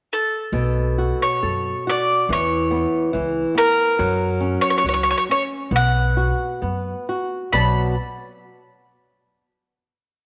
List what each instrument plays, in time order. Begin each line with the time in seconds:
0.13 mandolin A4
0.52 upright bass B1, nylon-string guitar B2
0.98 nylon-string guitar F#4
1.22 mandolin C#5
1.43 upright bass F#2, nylon-string guitar A4
1.87 nylon-string guitar F#4, mandolin D5
2.29 upright bass E2, nylon-string guitar E3, mandolin C#5
2.71 nylon-string guitar B3
3.13 upright bass C#2, nylon-string guitar E3
3.55 nylon-string guitar B3, mandolin A#4
3.99 upright bass F#2, nylon-string guitar F#3
4.40 nylon-string guitar C#4
4.61 mandolin C#5
4.70 mandolin C#5
4.78 mandolin C#5
4.84 upright bass C#2, nylon-string guitar F#3
4.89 mandolin C#5
4.94 mandolin C#5
5.03 mandolin C#5
5.11 mandolin C#5
5.18 mandolin C#5
5.29 nylon-string guitar C#4, mandolin C#5
5.71 upright bass B1, nylon-string guitar B3
5.76 mandolin F#5
6.17 nylon-string guitar F#4
6.62 upright bass F#2, nylon-string guitar B3
7.09 nylon-string guitar F#4
7.53 upright bass B1, nylon-string guitar B2 F#3 B3 F#4 D5 A5, mandolin B5